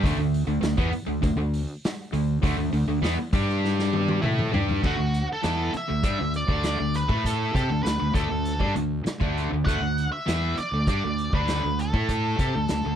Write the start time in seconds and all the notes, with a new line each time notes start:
0.03 D2 D3 A3, kick, open hi-hat
0.17 D2 D3 A3
0.34 open hi-hat
0.47 D2 D3 A3
0.61 D2 D3 A3, snare, open hi-hat
0.77 E2 E3 B3, kick
0.92 muted distorted electric guitar stroke, muted fingered electric bass stroke, open hi-hat
1.07 D2 D3 A3
1.22 D2 D3 A3, kick, open hi-hat
1.36 D2 D3 A3
1.54 open hi-hat
1.84 snare, open hi-hat
2.12 D2 D3 A3, open hi-hat
2.42 D2 D3 A3, kick, open hi-hat
2.57 D2 D3 A3
2.73 D2 D3 A3, open hi-hat
2.87 D2 D3 A3
3.02 E2 E3 B3, snare, open hi-hat
3.18 muted fingered electric bass stroke, muted distorted electric guitar stroke
3.33 G2 G3 D4 G4, kick, open hi-hat
3.49 snare
3.64 snare
3.79 snare
3.93 high tom
4.08 high tom
4.22 A2 A3 E4 A4, mid tom
4.39 mid tom
4.52 G2 G3 D4 G4, floor tom
4.69 floor tom
4.83 D2 D3 A3 F#4, kick, crash
4.98 D2 D3 A3
5.14 closed hi-hat
5.33 A4
5.43 E2 E3 B3 E4, snare, closed hi-hat
5.74 E5, muted fingered electric bass stroke, muted distorted electric guitar stroke, closed hi-hat
5.88 D2 D3 A3
6.03 G2 G3 D4, kick, closed hi-hat
6.19 D2 D3 A3
6.34 D5, closed hi-hat
6.48 D2 D3 A3 D4, kick
6.63 D5, snare, closed hi-hat
6.79 D2 D3 A3
6.94 B4, closed hi-hat
7.09 A2 A3 E4 A4, kick
7.24 A4, kick, closed hi-hat
7.54 C3 C4 G4 A4, kick, closed hi-hat
7.69 D2 D3 A3
7.83 D2 D3 A3 B4, snare, closed hi-hat
8.00 D2 D3 A3
8.13 D2 D3 A3 A4, kick, closed hi-hat
8.30 D2 D3 A3
8.45 closed hi-hat
8.60 G2 G3 D4, kick
8.74 D2 D3 A3, closed hi-hat
9.04 muted distorted electric guitar stroke, muted fingered electric bass stroke, snare, closed hi-hat
9.20 D2 D3 A3 D4, kick
9.38 closed hi-hat
9.52 D2 D3 A3
9.66 D2 D3 A3 F#5, kick, closed hi-hat
9.80 D2 D3 A3
9.98 closed hi-hat
10.12 E5
10.26 E2 E3 B3 E4, snare, closed hi-hat
10.57 D5, muted distorted electric guitar stroke, muted fingered electric bass stroke, closed hi-hat
10.72 D2 D3 A3
10.87 G2 G3 D4 D5, kick, closed hi-hat
11.04 D2 D3 A3
11.18 closed hi-hat
11.33 D2 D3 A3 D4 B4, kick
11.48 snare, closed hi-hat
11.64 D2 D3 A3
11.79 A4, closed hi-hat
11.94 A2 A3 E4 A4, kick
12.09 kick, closed hi-hat
12.39 C3 C4 G4, kick, closed hi-hat
12.55 D2 D3 A3
12.68 D2 D3 A3, snare, closed hi-hat
12.85 D2 D3 A3